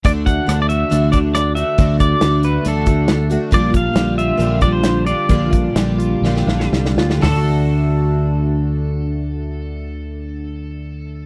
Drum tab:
HH |x-x-x-x-x-x-x-x-|x-x-x-x-x-x-x-x-|x-x-x-x-x-x-x-x-|x-x-x-x---------|
SD |----r-------r---|----o-------o---|----o-------o---|----o---oooooooo|
FT |----------------|----------------|----------------|----------------|
BD |o-o-------o-----|o-o-------o-----|o-o-------o-----|o-o-------------|

HH |o---------------|----------------|
SD |o---------------|----------------|
FT |o---------------|----------------|
BD |----------------|----------------|